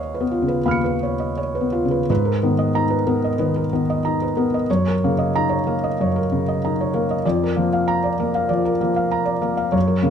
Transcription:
0.00 0.62 D#2 medium
0.00 0.14 B4 soft
0.00 1.03 C#5 medium
0.00 1.20 D#5 soft
0.00 0.66 F5 medium
0.14 0.43 B4 soft
0.21 0.58 B3 soft
0.31 0.60 F4 soft
0.42 0.81 C#3 soft
0.48 0.77 B4 soft
0.65 2.04 D#2 soft
0.65 0.95 F5 soft
0.65 2.04 B5 soft
0.65 2.05 F6 soft
0.71 2.07 C#7 soft
0.84 1.13 B4 soft
1.03 1.31 C#5 soft
1.20 1.38 D#5 soft
1.38 1.67 C#5 medium
1.55 1.84 B4 soft
1.61 1.99 B3 soft
1.72 2.01 F4 medium
1.85 2.09 C#3 soft
1.91 2.09 B4 medium
2.10 3.35 G#2 medium
2.10 2.36 B4 medium
2.25 2.52 A#4 medium
2.43 2.69 D#3 medium
2.43 2.95 B3 soft
2.59 2.85 D#5 medium
2.75 3.26 D#4 medium
2.75 3.01 A#5 medium
2.90 3.16 B4 medium
3.07 3.58 B3 medium
3.07 3.33 A#4 medium
3.24 3.49 D#5 medium
3.39 3.71 D#3 soft
3.39 3.64 B4 medium
3.56 3.81 A#4 medium
3.73 3.98 D#3 medium
3.73 4.24 B3 medium
3.90 4.14 D#5 medium
4.05 4.56 D#4 soft
4.05 4.30 A#5 medium
4.22 4.46 B4 medium
4.37 4.68 B3 medium
4.37 4.62 A#4 medium
4.54 4.69 D#5 medium
4.70 5.94 F#2 medium
4.70 4.94 C#5 medium
4.88 5.11 A#4 medium
5.04 5.28 C#3 medium
5.04 5.53 A#3 soft
5.19 5.43 D#5 medium
5.36 5.86 D#4 medium
5.36 5.59 A#5 medium
5.49 5.75 C#5 medium
5.67 6.18 A#3 soft
5.67 5.91 A#4 medium
5.84 6.08 D#5 medium
6.00 7.22 F#2 medium
6.00 6.25 C#5 medium
6.16 6.40 A#4 medium
6.32 6.56 C#3 medium
6.48 6.72 D#5 medium
6.65 7.13 D#4 medium
6.65 6.88 A#5 medium
6.81 7.04 C#5 medium
6.94 7.25 A#3 medium
6.94 7.18 A#4 medium
7.11 7.25 D#5 medium
7.25 8.48 F2 medium
7.25 7.50 D5 medium
7.44 7.67 A#4 medium
7.56 7.82 F3 medium
7.56 8.07 A#3 medium
7.73 7.98 F5 medium
7.88 8.13 A#5 medium
8.04 8.29 D5 medium
8.20 8.70 A#3 medium
8.20 8.45 A#4 medium
8.35 8.60 F5 medium
8.49 8.80 F3 medium
8.49 8.75 D5 medium
8.65 8.91 A#4 medium
8.81 9.07 F3 medium
8.81 9.31 A#3 medium
8.96 9.22 F5 medium
9.12 9.37 A#5 medium
9.25 9.52 D5 medium
9.41 9.74 A#3 medium
9.41 9.68 A#4 medium
9.57 9.74 F5 medium
9.72 10.10 F#2 medium
9.72 9.98 C#5 medium
9.88 10.10 A#4 medium
10.02 10.10 C#3 medium
10.02 10.10 A#3 medium

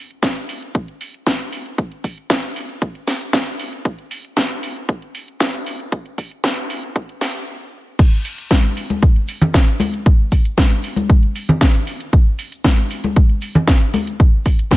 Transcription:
0.11 closed hi-hat soft
0.23 kick loud
0.23 snare loud
0.23 closed hi-hat medium
0.36 closed hi-hat soft
0.49 open hi-hat loud
0.62 closed hi-hat soft
0.75 kick loud
0.75 closed hi-hat medium
0.88 closed hi-hat soft
1.01 open hi-hat loud
1.14 closed hi-hat soft
1.27 kick loud
1.27 snare loud
1.27 closed hi-hat medium
1.40 closed hi-hat soft
1.52 open hi-hat loud
1.66 closed hi-hat soft
1.78 kick loud
1.78 closed hi-hat medium
1.92 closed hi-hat soft
2.04 kick medium
2.04 open hi-hat loud
2.18 closed hi-hat soft
2.30 kick loud
2.30 snare loud
2.30 closed hi-hat medium
2.44 closed hi-hat soft
2.56 open hi-hat loud
2.69 closed hi-hat soft
2.82 kick loud
2.82 closed hi-hat medium
2.95 closed hi-hat soft
3.08 snare medium
3.08 open hi-hat loud
3.21 closed hi-hat soft
3.33 kick loud
3.33 snare loud
3.33 closed hi-hat medium
3.47 closed hi-hat soft
3.59 open hi-hat loud
3.73 closed hi-hat soft
3.85 kick loud
3.85 closed hi-hat medium
3.99 closed hi-hat soft
4.11 open hi-hat loud
4.25 closed hi-hat soft
4.37 kick loud
4.37 snare loud
4.37 closed hi-hat medium
4.51 closed hi-hat soft
4.63 open hi-hat loud
4.76 closed hi-hat soft
4.89 kick loud
4.89 closed hi-hat medium
5.02 closed hi-hat soft
5.15 open hi-hat loud
5.28 closed hi-hat soft
5.40 kick loud
5.40 snare loud
5.40 closed hi-hat medium
5.54 closed hi-hat soft
5.66 open hi-hat loud
5.80 closed hi-hat soft
5.92 kick loud
5.92 closed hi-hat medium
6.06 closed hi-hat soft
6.18 kick medium
6.18 open hi-hat loud
6.31 closed hi-hat soft
6.44 kick loud
6.44 snare loud
6.44 closed hi-hat medium
6.57 closed hi-hat soft
6.70 open hi-hat loud
6.83 closed hi-hat soft
6.96 kick loud
6.96 closed hi-hat medium
7.09 closed hi-hat soft
7.21 snare medium
7.21 open hi-hat loud
7.35 closed hi-hat soft
7.99 kick loud
7.99 closed hi-hat medium
7.99 crash loud
7.99 cabasa soft
8.25 open hi-hat loud
8.25 cabasa medium
8.38 closed hi-hat medium
8.38 cabasa medium
8.51 kick loud
8.51 snare loud
8.51 closed hi-hat medium
8.51 high conga medium
8.51 cabasa soft
8.64 closed hi-hat soft
8.76 open hi-hat loud
8.76 cabasa medium
8.90 closed hi-hat medium
8.90 high conga medium
8.90 cabasa medium
9.02 kick loud
9.02 closed hi-hat medium
9.02 cabasa soft
9.16 closed hi-hat soft
9.28 open hi-hat loud
9.28 cabasa medium
9.42 closed hi-hat medium
9.42 low conga loud
9.42 cabasa medium
9.54 kick loud
9.54 snare loud
9.54 closed hi-hat medium
9.54 cabasa soft
9.68 closed hi-hat soft
9.80 open hi-hat loud
9.80 high conga medium
9.80 cabasa loud
9.93 closed hi-hat medium
9.93 cabasa medium
10.06 kick loud
10.06 closed hi-hat medium
10.06 cabasa soft
10.32 kick medium
10.32 open hi-hat loud
10.32 cabasa medium
10.45 closed hi-hat medium
10.45 cabasa medium
10.57 kick loud
10.57 snare loud
10.57 closed hi-hat medium
10.57 high conga medium
10.57 cabasa soft
10.71 closed hi-hat soft
10.83 open hi-hat loud
10.83 cabasa loud
10.96 closed hi-hat medium
10.96 high conga medium
10.96 cabasa medium
11.09 kick loud
11.09 closed hi-hat medium
11.09 cabasa soft
11.23 closed hi-hat soft
11.36 open hi-hat loud
11.36 cabasa loud
11.49 closed hi-hat medium
11.49 low conga medium
11.49 cabasa medium
11.61 kick loud
11.61 snare loud
11.61 closed hi-hat medium
11.61 cabasa soft
11.75 closed hi-hat soft
11.87 open hi-hat loud
11.87 cabasa medium
12.00 closed hi-hat medium
12.00 cabasa medium
12.13 kick loud
12.13 closed hi-hat medium
12.13 cabasa soft
12.39 open hi-hat loud
12.39 cabasa medium
12.52 closed hi-hat medium
12.52 cabasa medium
12.64 kick loud
12.64 snare loud
12.64 closed hi-hat medium
12.64 high conga medium
12.64 cabasa soft
12.78 closed hi-hat soft
12.90 open hi-hat loud
12.90 cabasa medium
13.04 closed hi-hat soft
13.04 high conga medium
13.04 cabasa soft
13.16 kick loud
13.16 closed hi-hat medium
13.16 cabasa soft
13.29 closed hi-hat soft
13.41 open hi-hat loud
13.41 cabasa medium
13.55 closed hi-hat medium
13.55 low conga loud
13.55 cabasa soft
13.67 kick loud
13.67 snare loud
13.67 closed hi-hat medium
13.67 cabasa soft
13.81 closed hi-hat soft
13.94 open hi-hat loud
13.94 high conga medium
13.94 cabasa medium
14.07 closed hi-hat medium
14.07 cabasa soft
14.20 kick loud
14.20 closed hi-hat medium
14.20 cabasa soft
14.45 kick medium
14.45 open hi-hat loud
14.45 cabasa medium
14.59 closed hi-hat medium
14.59 cabasa soft
14.71 kick loud
14.71 snare loud
14.71 closed hi-hat medium
14.71 high conga medium
14.71 cabasa soft

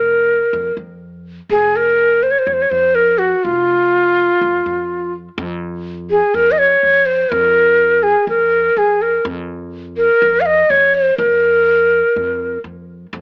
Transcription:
0.00 0.38 F1 medium
0.00 0.73 A#4 medium
0.53 0.74 F2 medium
0.77 1.39 F2 medium
1.49 2.32 F1 medium
1.49 1.78 G#4 medium
1.76 2.25 A#4 loud
2.23 2.32 C5 medium
2.31 2.40 C#5 medium
2.39 2.48 C5 medium
2.47 2.67 F2 medium
2.47 2.55 C#5 medium
2.53 2.63 C5 medium
2.62 2.72 C#5 medium
2.70 3.33 F2 medium
2.70 2.96 C5 loud
2.95 3.20 A#4 medium
3.18 3.45 F#4 medium
3.44 4.27 F1 medium
3.44 5.13 F4 medium
4.41 4.62 F2 medium
4.66 5.27 F2 medium
5.38 6.20 F2 loud
6.10 6.36 G#4 medium
6.34 6.75 F2 medium
6.34 6.53 A#4 loud
6.51 6.60 D#5 medium
6.58 7.07 C#5 loud
6.83 7.24 F2 medium
7.06 7.32 C5 medium
7.30 8.13 F2 loud
7.30 8.05 A#4 loud
8.03 8.28 G#4 medium
8.27 8.69 F2 medium
8.27 8.79 A#4 medium
8.77 9.18 F2 medium
8.77 9.03 G#4 medium
9.02 9.25 A#4 medium
9.25 10.07 F2 loud
9.97 10.42 A#4 loud
10.22 10.63 F2 medium
10.41 10.47 F5 medium
10.46 10.72 D#5 medium
10.70 11.11 F2 medium
10.70 10.96 C#5 loud
10.94 11.17 C5 medium
11.18 12.01 F2 loud
11.18 12.60 A#4 medium
12.16 12.57 F2 medium
12.64 13.05 F2 medium
13.13 13.21 F2 loud

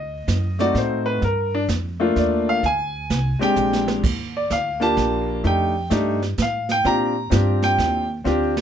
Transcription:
0.00 0.26 D2 medium
0.00 0.56 D#5 medium
0.28 0.73 F#2 medium
0.28 kick soft
0.28 snare medium
0.28 hi-hat pedal medium
0.59 1.19 A3 medium
0.59 1.19 C4 medium
0.59 1.19 D#4 medium
0.59 1.19 F#4 medium
0.59 0.75 D5 loud
0.59 snare soft
0.75 1.20 A2 loud
0.75 1.06 C5 medium
0.75 kick soft
0.75 snare soft
1.06 1.21 B4 medium
1.22 1.68 G2 medium
1.22 1.53 A#4 medium
1.22 brush sweep soft
1.22 kick soft
1.22 snare soft
1.55 1.64 D4 medium
1.68 2.14 F2 medium
1.68 kick soft
1.68 snare medium
1.68 hi-hat pedal medium
2.00 2.59 A3 medium
2.00 2.60 A#3 medium
2.00 2.60 D4 medium
2.00 2.60 F4 medium
2.16 2.61 D#2 loud
2.16 2.48 D5 medium
2.16 kick soft
2.16 snare soft
2.49 2.63 F5 loud
2.63 3.08 D2 medium
2.63 3.38 G#5 loud
2.63 brush sweep soft
2.63 kick soft
2.63 snare soft
3.10 3.39 C2 medium
3.10 kick soft
3.10 snare medium
3.10 hi-hat pedal medium
3.39 4.00 G#3 medium
3.39 4.00 C4 medium
3.39 4.00 D4 medium
3.39 4.01 G4 medium
3.39 3.85 G5 loud
3.39 muted upright bass stroke soft
3.39 snare soft
3.56 4.02 A#1 medium
3.56 hi-hat pedal medium
3.73 snare medium
3.88 snare medium
4.03 4.49 D#2 medium
4.03 brush sweep medium
4.03 kick medium
4.03 snare soft
4.03 crash medium
4.37 4.51 D5 medium
4.50 4.96 D2 medium
4.50 4.81 F5 medium
4.50 kick soft
4.50 snare medium
4.50 hi-hat pedal medium
4.80 5.40 A#3 medium
4.80 5.41 D4 medium
4.80 5.41 F4 medium
4.80 5.41 G4 medium
4.80 5.41 A5 loud
4.80 snare soft
4.97 5.43 A#1 medium
4.97 kick soft
4.97 snare soft
5.44 5.90 F2 medium
5.44 5.72 A3 medium
5.44 5.72 D4 medium
5.44 5.72 D#4 medium
5.44 5.73 G4 medium
5.44 5.89 G5 medium
5.44 brush sweep medium
5.44 kick soft
5.44 snare soft
5.90 6.37 G2 medium
5.90 6.19 A3 medium
5.90 6.19 D4 medium
5.90 6.19 D#4 medium
5.90 6.19 G4 medium
5.90 kick soft
5.90 snare medium
5.90 hi-hat pedal medium
6.22 snare soft
6.38 6.84 A2 medium
6.38 kick soft
6.38 snare medium
6.38 hi-hat pedal medium
6.42 6.70 F5 medium
6.69 6.86 G5 loud
6.69 snare soft
6.85 7.31 A#2 medium
6.85 7.13 C4 medium
6.85 7.13 D4 medium
6.85 7.13 F4 medium
6.85 7.14 G4 medium
6.85 7.60 A#5 loud
6.85 brush sweep soft
6.85 kick soft
6.85 snare soft
7.30 7.77 G2 medium
7.30 8.03 C4 medium
7.30 8.03 D4 medium
7.30 8.03 F4 medium
7.30 8.04 G4 medium
7.30 kick soft
7.30 snare medium
7.30 hi-hat pedal medium
7.62 8.07 G5 loud
7.62 snare soft
7.78 8.24 D#2 loud
7.78 kick soft
7.78 snare soft
8.24 8.61 D2 medium
8.24 8.53 C4 medium
8.24 8.53 D4 medium
8.24 8.54 F4 medium
8.24 8.54 G4 medium
8.24 snare medium
8.57 snare medium

